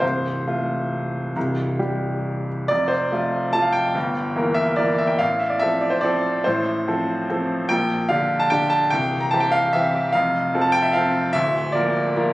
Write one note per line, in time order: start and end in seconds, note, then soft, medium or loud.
0.00 0.45 C1 soft
0.00 0.45 C2 soft
0.00 2.47 C5 medium
0.47 1.32 A3 soft
0.47 1.32 F4 soft
1.36 1.78 C1 soft
1.36 1.78 C2 soft
1.79 2.66 G3 soft
1.79 2.66 G4 soft
2.68 3.10 F1 medium
2.68 3.10 F2 soft
2.68 2.90 D5 medium
2.88 3.52 C5 medium
3.11 3.50 F3 soft
3.11 3.50 A3 soft
3.11 3.50 F4 soft
3.53 3.91 F3 soft
3.53 3.92 A3 soft
3.53 3.92 F4 soft
3.53 3.64 A5 medium
3.62 3.74 F5 medium
3.72 4.56 G5 medium
3.95 4.35 G1 soft
3.95 4.35 G2 medium
4.36 4.75 E3 soft
4.36 4.75 A#3 soft
4.36 4.75 A#4 soft
4.54 4.77 E5 medium
4.76 5.16 E3 soft
4.76 5.17 A#3 soft
4.76 5.16 A#4 soft
4.76 4.99 D5 medium
4.98 5.09 E5 medium
5.07 5.19 G5 medium
5.19 5.60 A1 soft
5.19 5.60 A2 medium
5.19 5.40 F5 medium
5.39 5.50 E5 medium
5.50 5.60 D5 medium
5.59 6.00 F3 soft
5.59 6.00 C4 soft
5.59 6.00 A4 soft
5.59 5.81 E5 medium
5.81 5.92 D5 medium
5.90 6.02 C5 medium
6.01 6.41 F3 soft
6.01 6.41 C4 soft
6.01 6.42 A4 medium
6.01 6.44 D5 medium
6.44 6.86 A1 medium
6.44 6.86 A2 medium
6.44 7.70 C5 medium
6.87 7.25 F3 soft
6.87 7.26 C4 soft
6.87 7.26 A4 soft
7.30 7.66 F3 soft
7.30 7.66 C4 soft
7.30 7.67 A4 soft
7.69 8.10 A#1 medium
7.69 8.10 A#2 medium
7.69 8.10 G5 medium
8.09 8.48 D3 soft
8.09 8.49 D4 medium
8.09 8.49 G4 medium
8.09 8.41 F5 medium
8.39 8.51 A5 medium
8.50 8.88 D3 soft
8.50 8.89 D4 soft
8.50 8.89 G4 medium
8.50 8.72 G5 medium
8.70 8.91 A5 medium
8.90 9.31 C1 medium
8.90 9.31 C2 medium
8.90 9.21 G5 medium
9.20 9.32 A#5 medium
9.31 9.70 E3 soft
9.31 9.70 C4 soft
9.31 9.71 G4 medium
9.31 9.42 A5 medium
9.40 9.52 G5 medium
9.51 9.73 F5 medium
9.73 10.11 E3 soft
9.73 10.11 C4 medium
9.73 10.11 G4 medium
9.73 10.14 E5 medium
10.13 10.53 F1 medium
10.13 10.53 F2 medium
10.13 10.63 F5 medium
10.54 10.91 F3 medium
10.54 10.91 C4 medium
10.54 10.91 A4 medium
10.61 10.73 A5 medium
10.72 10.83 G5 loud
10.82 10.94 E5 medium
10.93 11.31 F3 medium
10.93 11.31 C4 medium
10.93 11.31 A4 medium
10.93 11.34 F5 medium
11.33 11.73 D1 medium
11.33 11.73 D2 medium
11.33 11.73 E5 loud
11.72 12.12 F3 medium
11.72 12.12 A#3 medium
11.72 12.13 A#4 medium
11.72 12.33 D5 medium
12.16 12.33 F3 medium
12.16 12.33 A#3 medium
12.16 12.33 A#4 medium